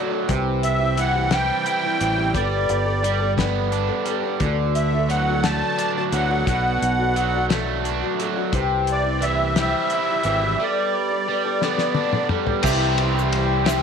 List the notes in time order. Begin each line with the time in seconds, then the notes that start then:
Already playing: F#3 A3 D4
0.10 A3 D4 F#4
0.28 C2 C3 E3 C4 E4 G4, kick, closed hi-hat
0.63 E5, closed hi-hat
0.79 C4 E4 G4
0.96 E3 C4 E4 G4 F#5, closed hi-hat
1.15 C4 E4 G4
1.30 C3 E3 G3 C4 E4 G4 G5, snare, closed hi-hat
1.65 E4, closed hi-hat
1.83 C4 E4 G4
2.00 A1 E3 C4 E4 G4, closed hi-hat
2.17 C4 E4 G4
2.34 G1 G3 B3 D4 A4 D5, kick, closed hi-hat
2.69 G1, closed hi-hat
2.85 B3 D4 A4
3.03 G3 B3 D4 A4, closed hi-hat
3.19 B3 D4 A4
3.37 G3 B3 D4 A4, kick, snare, closed hi-hat
3.72 D4, closed hi-hat
3.88 B3 D4 A4
4.06 G3 B3 D4 A4, closed hi-hat
4.23 B3 D4 A4
4.40 D2 D3 E3 A3 D4 F#4, kick, closed hi-hat
4.75 E5, closed hi-hat
4.93 A3 D4 F#4
5.08 E3 F#3 A3 D4 F#5, closed hi-hat
5.13 F#4
5.29 A3 D4 F#4
5.44 D3 E3 A3 D4 F#4 A5, snare, closed hi-hat
5.78 D4, closed hi-hat
5.97 A3 D4 F#4 A5
6.12 D2 E3 F#3 A3 D4 F#4 F#5, closed hi-hat
6.30 A3 D4 F#4
6.47 B1 B2 F#3 A3 D4 F#4 F#5, kick, closed hi-hat
6.82 B1, closed hi-hat
6.99 A3 D4 F#4
7.16 F#3 A3 D4 F#4, closed hi-hat
7.34 A3 D4 F#4
7.50 B2 F#3 A3 D4 F#4, snare, closed hi-hat
7.84 D4, closed hi-hat
8.02 A3 D4 F#4
8.19 F#3 A3 D4 F#4, closed hi-hat
8.36 A3 D4 F#4
8.53 C2 C3 E3 C4 E4 G4, kick, closed hi-hat
8.87 closed hi-hat
8.92 D5
9.04 C4 E4 G4
9.22 E3 C4 E4 G4 E5, closed hi-hat
9.39 C4 E4 G4
9.56 C3 E3 G3 C4 E4 G4, snare, closed hi-hat
9.61 E5
9.90 E4, closed hi-hat
10.09 C4 E4 G4
10.23 G#1 E3 C4 E4 G4, closed hi-hat
10.43 C4 E4 G4
10.60 G3 B3 D4 A4 D5
11.10 B3 D4 A4
11.29 G3 B3 D4 A4
11.45 B3 D4 A4
11.62 G3 B3 D4 A4, snare
11.78 snare
11.95 D4, high tom
12.13 B3 D4 A4, mid tom
12.29 G3 B3 D4 A4, mid tom
12.47 B3 D4 A4, floor tom
12.62 C2 C3 E3 G3 C4 E4 G4 C5 E5 C6, kick, crash, shaker
12.98 E4 G4, ride
13.02 C4
13.19 shaker
13.32 G3 C4 E4 G4, ride
13.64 G3 E4 G4 C5 E5, snare, ride
13.68 C3 E3 C4, shaker